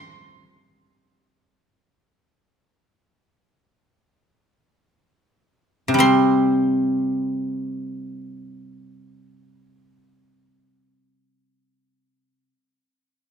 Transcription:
0.00 0.52 F3 medium
0.00 0.20 G4 medium
0.00 0.53 C5 medium
0.00 0.25 G5 medium
0.00 1.22 C6 loud
1.22 1.67 C#6 loud
1.67 2.15 C6 loud
2.15 2.59 C#6 loud
2.59 4.21 C6 loud
5.88 12.51 C3 medium
5.94 12.01 G3 medium
5.98 11.08 C4 medium
5.98 10.65 C6 medium

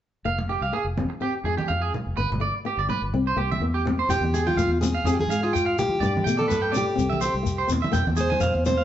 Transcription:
0.25 0.56 F1 medium
0.25 0.44 A#3 medium
0.25 0.37 F5 medium
0.39 low conga medium
0.49 0.68 G#3 medium
0.49 0.61 G4 medium
0.61 0.71 C2 medium
0.61 0.72 F5 medium
0.73 0.92 A#3 medium
0.73 0.85 G#4 medium
0.85 1.05 F1 medium
0.97 1.16 C4 medium
0.97 high conga medium
0.97 low conga medium
1.10 muted clean electric guitar stroke medium
1.21 1.40 C4 medium
1.21 1.33 G4 medium
1.44 1.56 F2 medium
1.44 1.65 G#3 medium
1.44 1.57 G#4 medium
1.57 1.68 G4 medium
1.57 high conga medium
1.68 1.90 F2 medium
1.68 1.89 G#3 medium
1.68 1.80 F5 medium
1.82 1.92 G#4 medium
1.94 2.13 A#3 medium
1.94 low conga medium
2.07 2.16 F1 medium
2.17 2.29 G1 medium
2.17 2.36 B3 medium
2.17 2.29 B4 medium
2.30 2.50 G1 medium
2.30 low conga medium
2.40 2.60 A3 medium
2.40 2.53 D5 medium
2.65 2.84 B3 medium
2.65 2.78 G4 medium
2.77 2.87 G1 medium
2.77 2.89 D5 medium
2.89 3.01 B4 medium
2.89 muted nylon-string guitar stroke medium
2.89 low conga medium
3.02 3.12 G1 medium
3.13 3.34 C2 loud
3.13 3.33 C4 medium
3.27 3.37 C5 medium
3.36 3.57 C2 medium
3.36 3.56 A#3 medium
3.36 3.49 G4 medium
3.51 3.61 E5 medium
3.51 high conga medium
3.60 4.01 E2 medium
3.60 3.81 A#3 medium
3.74 3.85 G4 medium
3.85 4.05 C4 medium
3.85 low conga medium
3.99 4.09 C5 medium
4.09 4.20 F2 medium
4.09 4.46 G4 medium
4.09 4.22 G5 medium
4.09 muted nylon-string guitar stroke medium
4.09 low conga medium
4.09 shekere medium
4.21 4.51 E2 medium
4.21 high conga medium
4.34 4.53 G#3 medium
4.34 4.46 G#4 medium
4.34 shekere medium
4.47 4.80 F4 medium
4.47 4.57 G5 medium
4.47 high conga medium
4.56 4.68 F2 medium
4.56 4.77 A#3 medium
4.56 4.69 F5 medium
4.56 low conga medium
4.56 shekere medium
4.68 4.98 E2 medium
4.81 5.01 C4 medium
4.81 5.06 G#4 medium
4.81 low conga medium
4.81 shekere medium
4.95 5.05 F5 medium
5.04 5.25 F2 medium
5.04 5.25 C4 medium
5.04 5.17 G#4 medium
5.04 5.13 G#4 medium
5.04 shekere medium
5.14 5.20 G4 medium
5.19 5.43 G#4 medium
5.19 high conga medium
5.28 5.79 G#2 medium
5.28 5.48 G#3 medium
5.28 5.42 F5 medium
5.28 shekere medium
5.43 5.76 F4 medium
5.43 5.53 G#4 medium
5.53 5.72 G#3 medium
5.53 5.65 G5 medium
5.53 shekere medium
5.66 5.77 F5 medium
5.79 5.97 A#3 medium
5.79 6.36 G4 medium
5.79 low conga medium
5.79 shekere medium
5.89 5.99 F3 medium
6.00 6.21 G2 medium
6.00 6.21 B3 medium
6.00 6.13 D5 medium
6.00 low conga medium
6.00 shekere medium
6.17 high conga medium
6.24 6.51 B2 medium
6.24 6.45 A3 medium
6.24 6.37 G5 medium
6.24 shekere medium
6.37 6.75 A4 medium
6.37 6.48 D5 medium
6.37 high conga medium
6.48 6.90 G2 medium
6.48 6.68 B3 medium
6.48 6.60 B4 medium
6.48 shekere medium
6.52 low conga medium
6.62 6.72 G5 medium
6.72 6.92 C#4 medium
6.72 6.84 D5 medium
6.72 shekere medium
6.76 7.21 G4 medium
6.76 low conga medium
6.96 7.29 C2 medium
6.96 7.15 C4 medium
6.96 shekere medium
7.10 7.20 E5 medium
7.10 high conga medium
7.21 7.40 A#3 medium
7.21 7.33 C5 medium
7.21 shekere medium
7.25 7.69 G4 medium
7.34 7.63 C2 medium
7.43 7.63 A#3 medium
7.43 shekere medium
7.58 7.69 C5 medium
7.67 7.80 E2 medium
7.67 7.87 C4 medium
7.67 shekere medium
7.72 low conga medium
7.82 7.92 E5 medium
7.82 high conga medium
7.92 8.05 F2 medium
7.92 8.11 A#3 medium
7.92 8.05 G5 medium
7.92 low conga medium
7.92 shekere medium
8.07 8.36 E2 medium
8.07 high conga medium
8.16 8.36 G#3 medium
8.16 8.29 G#4 medium
8.16 shekere medium
8.21 8.65 C5 medium
8.30 8.40 G#5 medium
8.30 high conga medium
8.40 8.53 F2 medium
8.40 8.59 A#3 medium
8.40 8.53 F5 medium
8.40 low conga medium
8.40 shekere medium
8.55 8.84 E2 medium
8.66 8.84 C4 medium
8.66 8.84 C5 medium
8.66 low conga medium
8.66 shekere medium
8.78 8.84 F5 medium

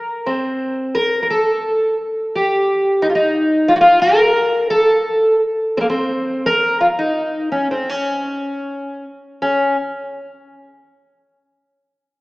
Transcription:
0.00 0.27 A#4 medium
0.26 0.96 C4 medium
0.95 1.20 A#4 loud
1.23 1.29 A#4 medium
1.30 1.96 A4 medium
2.36 2.99 G4 medium
3.02 3.09 D#4 medium
3.10 3.15 F4 medium
3.15 3.71 D#4 medium
3.68 3.75 F4 loud
3.76 3.80 F#4 medium
3.81 4.01 F4 loud
4.02 4.70 A#4 medium
4.70 5.35 A4 medium
5.77 5.88 A#3 medium
5.77 5.80 C4 medium
5.90 6.47 C4 medium
6.46 6.78 A#4 loud
6.81 6.86 F4 medium
6.99 7.51 D#4 medium
7.52 7.70 C#4 medium
7.71 7.89 C4 medium
7.89 9.04 C#4 medium
9.42 9.76 C#4 medium

